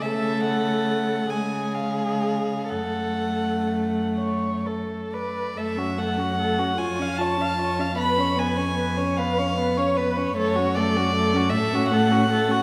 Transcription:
<<
  \new Staff \with { instrumentName = "Violin" } { \time 6/8 \key fis \minor \tempo 4. = 50 e''8 fis''4 gis''8 eis''4 | fis''4. r4 d''8 | e''8 fis''4 gis''8 a''4 | b''8 gis''4 eis''8. cis''16 b'8 |
cis''8 d''4 e''8 fis''4 | }
  \new Staff \with { instrumentName = "Violin" } { \time 6/8 \key fis \minor a'4. gis'4. | a'4. cis''8 a'8 b'8 | a'16 fis'16 a'16 fis'16 a'16 fis'16 cis''16 eis''16 cis''16 eis''16 cis''16 eis''16 | b'16 cis''16 b'16 cis''16 b'16 cis''16 b'16 cis''16 b'16 cis''16 b'16 cis''16 |
a'16 fis'16 a'16 fis'16 a'16 fis'16 a'16 fis'16 a'16 fis'16 a'16 fis'16 | }
  \new Staff \with { instrumentName = "Viola" } { \time 6/8 \key fis \minor a4. gis4. | a2~ a8. r16 | a16 cis'16 a16 cis'16 a16 cis'16 eis'16 cis'16 eis'16 cis'16 eis'16 cis'16 | b16 cis'16 b16 cis'16 b16 cis'16 b16 cis'16 b16 cis'16 b16 cis'16 |
a16 cis'16 a16 cis'16 a16 cis'16 a16 cis'16 a16 cis'16 a16 cis'16 | }
  \new Staff \with { instrumentName = "Cello" } { \clef bass \time 6/8 \key fis \minor cis4. cis4. | fis,2~ fis,8. r16 | fis,4. eis,4.~ | eis,2. |
fis,4. a,4. | }
>>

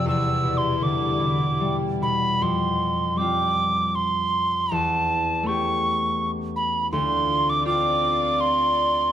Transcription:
<<
  \new Staff \with { instrumentName = "Tin whistle" } { \time 3/4 \key f \lydian \tempo 4 = 79 \tuplet 3/2 { e'''4 c'''8 } d'''4. b''8 | c'''4 d'''4 c'''4 | a''4 cis'''4~ cis'''16 r16 b''8 | c'''8. d'''16 d'''4 c'''4 | }
  \new Staff \with { instrumentName = "String section" } { \time 3/4 \key f \lydian <g e' d''>2. | r2. | r2. | <c' f' d''>2. | }
  \new Staff \with { instrumentName = "Harp" } { \clef bass \time 3/4 \key f \lydian e,8 b,8 d8 b,8 g8 b,8 | f,4 <g c' f'>2 | e,4 <a cis' g'>2 | d,4 <c' d' f'>2 | }
>>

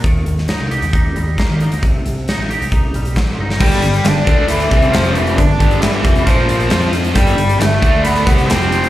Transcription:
<<
  \new Staff \with { instrumentName = "Clean electric guitar" } { \time 4/4 \key c \lydian \tempo 4 = 135 ees4 ees'8 g'8 ees'8 g8 bes8 ees'8 | c4 ees'8 g'8 ees'8 g8 c'8 ees'8 | r1 | r1 |
r1 | }
  \new Staff \with { instrumentName = "Lead electric guitar" } { \time 4/4 \key c \lydian r1 | r1 | <g g'>4 <d' d''>4 <e e'>4 <f f'>8 <e e'>8 | <d' d''>4 <e e'>4 <f f'>4. r8 |
<g g'>4 <a a'>4 <b b'>8 <b b'>8 <c' c''>4 | }
  \new Staff \with { instrumentName = "Overdriven electric guitar" } { \clef bass \time 4/4 \key c \lydian r1 | r1 | <g, d g>8 <g, d>8 <g, d>8 <d a d'>4 <c g c'>8 <f, c f>4 | <g, d>8 <g, d g>4 <f, c f>8 <bes, f bes>4 <f c' f'>4 |
<g, d g>8 <g, d>8 <g, d>8 <d a d'>4 <c g c'>8 <f, c f>4 | }
  \new Staff \with { instrumentName = "Picked electric bass" } { \clef bass \time 4/4 \key c \lydian ees,8 ees,8 r16 c,8 ees,8. ees,8 r16 ees8 d,16 | c,8 c,8 r16 a,,8 c,8. b,,8 a,,8 g,,8 | g,,8 g,,8 g,,8 d,4 c,8 f,,4 | g,,8 g,,4 f,,8 bes,,4 f,4 |
g,,8 g,,8 g,,8 d,4 c,8 f,,4 | }
  \new DrumStaff \with { instrumentName = "Drums" } \drummode { \time 4/4 <hh bd>8 hh16 sn16 <hh sn>8 hh16 hh16 <hh bd>8 hh8 <hh bd sn>8 hh16 hh16 | <hh bd>8 hh8 <hh sn>8 hh16 hh16 <hh bd>8 hh16 hh16 <hh bd sn>8 tommh16 sn16 | <cymc bd>16 hh16 hh16 hh16 <hh sn>8 <hh bd>8 hh16 hh16 <hh bd>16 hh16 <hh sn>16 hh16 hh16 hh16 | <hh bd>8 <hh bd>16 hh16 <hh sn>8 <hh bd>16 hh16 <hh bd>8 hh16 hh16 <hh sn>16 hh16 <hh sn>16 hh16 |
<hh bd>16 hh16 hh16 hh16 <hh sn>8 <hh bd>8 hh16 hh16 <hh bd>16 hh16 <hh sn>16 hh16 hh16 hh16 | }
>>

